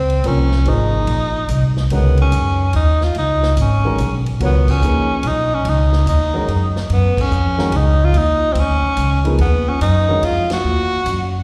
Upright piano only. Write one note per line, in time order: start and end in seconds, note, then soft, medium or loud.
0.24 0.49 F3 medium
0.24 0.49 A#3 medium
0.24 0.49 C#4 medium
0.24 0.49 F4 medium
0.24 0.50 A#4 medium
0.65 1.29 F3 medium
0.65 1.29 A#3 soft
0.65 1.30 D#4 soft
0.65 1.30 G#4 soft
0.65 1.30 C5 medium
1.91 2.55 D#3 medium
1.91 2.55 G#3 medium
1.91 2.55 C#4 medium
1.91 2.55 F#4 medium
1.91 2.55 A#4 medium
3.85 3.97 D#3 medium
3.85 3.98 G#3 medium
3.85 3.98 C#4 medium
3.85 3.98 F#4 medium
3.85 3.98 A#4 medium
4.40 4.81 F#3 medium
4.40 4.81 B3 medium
4.40 4.81 F4 medium
4.40 4.82 A#4 medium
4.40 4.82 C#5 medium
4.82 5.07 F3 medium
4.82 5.07 A#3 medium
4.82 5.07 D#4 medium
4.82 5.08 G#4 medium
4.82 5.08 B4 medium
6.34 6.47 D#3 medium
6.34 6.47 G#3 medium
6.34 6.47 C#4 medium
6.34 6.47 F#4 medium
6.34 6.47 A#4 medium
7.58 7.72 D#3 medium
7.58 7.72 G#3 medium
7.58 7.72 C#4 medium
7.58 7.72 F#4 medium
7.58 7.72 A#4 medium
9.24 9.38 F3 medium
9.24 9.38 A#3 medium
9.24 9.38 D#4 medium
9.24 9.39 G#4 medium
9.24 9.38 B4 medium
10.08 10.21 D#3 medium
10.08 10.22 G#3 medium
10.08 10.22 C#4 medium
10.08 10.22 F#4 medium
10.08 10.22 A#4 medium